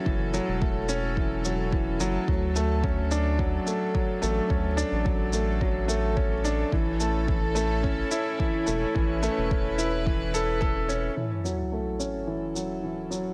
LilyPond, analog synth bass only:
\new Staff \with { instrumentName = "Analog synth bass" } { \clef bass \time 4/4 \key fis \minor \tempo 4 = 108 fis,,8 r16 e,,2~ e,,8. fis,,16 r16 | d,2~ d,16 r4 r16 a,,16 r16 | d,8 r16 a,,2. r16 | a,,2~ a,,16 r4 r16 e,,16 r16 |
a,,8 r16 e,,2. r16 | r1 | }